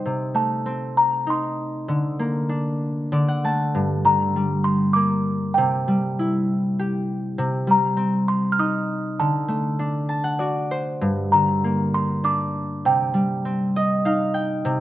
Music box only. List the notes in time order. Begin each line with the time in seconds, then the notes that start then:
0.36 A5
0.97 A#5
1.30 C6
4.05 A#5
4.64 C6
4.93 D6
5.54 G5
7.71 A#5
8.28 C6
8.52 F6
8.60 D#6
9.20 A5
11.32 A#5
11.94 C6
12.25 D6
12.86 G5